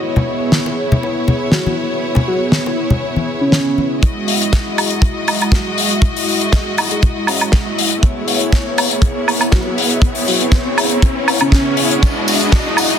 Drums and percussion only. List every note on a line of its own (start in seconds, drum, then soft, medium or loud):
0.16 high bongo medium
0.16 low conga medium
0.52 snare loud
0.66 high bongo medium
0.92 low conga medium
1.03 high bongo medium
1.28 low conga medium
1.52 snare loud
1.66 high conga medium
2.15 high bongo medium
2.15 low conga medium
2.52 snare loud
2.66 high bongo medium
2.90 low conga medium
3.16 high conga medium
3.52 snare loud
3.78 high conga soft
4.03 kick loud
4.03 closed hi-hat medium
4.28 open hi-hat loud
4.41 closed hi-hat medium
4.53 kick medium
4.53 snare loud
4.53 closed hi-hat medium
4.78 open hi-hat loud
4.78 high woodblock medium
4.91 closed hi-hat medium
5.02 kick loud
5.02 closed hi-hat medium
5.28 open hi-hat loud
5.28 high woodblock medium
5.41 closed hi-hat medium
5.41 high woodblock medium
5.52 kick loud
5.52 snare loud
5.52 closed hi-hat medium
5.78 open hi-hat loud
5.90 closed hi-hat medium
6.02 kick loud
6.02 closed hi-hat medium
6.16 open hi-hat medium
6.28 open hi-hat loud
6.41 closed hi-hat medium
6.52 kick medium
6.52 snare loud
6.52 closed hi-hat medium
6.78 open hi-hat loud
6.78 high woodblock medium
6.91 closed hi-hat medium
7.03 kick loud
7.03 closed hi-hat medium
7.27 open hi-hat loud
7.27 high woodblock medium
7.41 closed hi-hat medium
7.41 high woodblock medium
7.52 kick loud
7.52 snare loud
7.52 closed hi-hat medium
7.78 open hi-hat loud
7.91 closed hi-hat medium
8.03 kick loud
8.03 closed hi-hat medium
8.28 open hi-hat loud
8.41 closed hi-hat medium
8.53 kick loud
8.53 snare loud
8.53 closed hi-hat medium
8.78 open hi-hat loud
8.78 high woodblock medium
8.91 closed hi-hat medium
9.02 kick loud
9.02 closed hi-hat medium
9.28 open hi-hat loud
9.28 high woodblock medium
9.41 closed hi-hat medium
9.41 high woodblock medium
9.52 kick loud
9.52 snare loud
9.52 closed hi-hat medium
9.78 open hi-hat loud
9.91 closed hi-hat medium
10.02 kick loud
10.02 closed hi-hat medium
10.15 open hi-hat medium
10.28 open hi-hat loud
10.41 closed hi-hat medium
10.52 kick loud
10.52 snare loud
10.52 closed hi-hat medium
10.78 open hi-hat loud
10.78 high woodblock medium
10.90 closed hi-hat medium
11.02 kick loud
11.02 closed hi-hat medium
11.28 open hi-hat loud
11.28 high woodblock medium
11.40 closed hi-hat medium
11.40 high woodblock medium
11.52 kick medium
11.52 snare loud
11.52 closed hi-hat medium
11.77 open hi-hat loud
11.91 closed hi-hat medium
12.03 kick loud
12.03 closed hi-hat medium
12.03 tambourine soft
12.28 open hi-hat loud
12.28 tambourine medium
12.40 closed hi-hat medium
12.40 tambourine soft
12.52 kick loud
12.52 snare loud
12.52 closed hi-hat medium
12.52 tambourine soft
12.77 open hi-hat loud
12.77 tambourine medium
12.77 high woodblock medium
12.90 closed hi-hat medium
12.90 tambourine soft